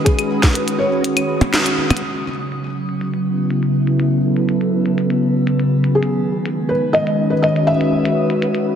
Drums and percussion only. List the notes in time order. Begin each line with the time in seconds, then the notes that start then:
0.06 kick, closed hi-hat
0.19 closed hi-hat, claves
0.43 kick, snare, closed hi-hat
0.55 closed hi-hat
0.68 closed hi-hat
1.04 closed hi-hat
1.17 closed hi-hat, claves
1.41 closed hi-hat, percussion blips
1.54 snare
1.66 closed hi-hat
1.91 closed hi-hat, percussion blips, claves
1.97 closed hi-hat
2.03 closed hi-hat
2.09 closed hi-hat
2.52 closed hi-hat
2.89 closed hi-hat
3.01 closed hi-hat
3.14 closed hi-hat
3.50 closed hi-hat
3.63 closed hi-hat
3.87 closed hi-hat
4.00 closed hi-hat
4.36 closed hi-hat
4.49 closed hi-hat
4.61 closed hi-hat
4.86 closed hi-hat
4.98 closed hi-hat
5.10 closed hi-hat
5.47 closed hi-hat
5.60 closed hi-hat
5.84 closed hi-hat
6.03 closed hi-hat
6.46 closed hi-hat
6.95 closed hi-hat
7.07 closed hi-hat
7.44 closed hi-hat
7.56 closed hi-hat
7.81 closed hi-hat
8.05 closed hi-hat
8.30 closed hi-hat
8.42 closed hi-hat
8.55 closed hi-hat